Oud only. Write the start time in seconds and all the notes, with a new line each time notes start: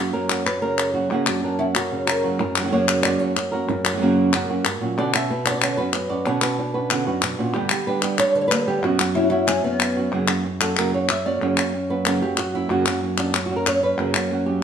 1.26 D4
1.59 E4
1.76 F#4
2.07 A#4
9.15 E4
9.30 E4
9.47 C#4
9.64 B3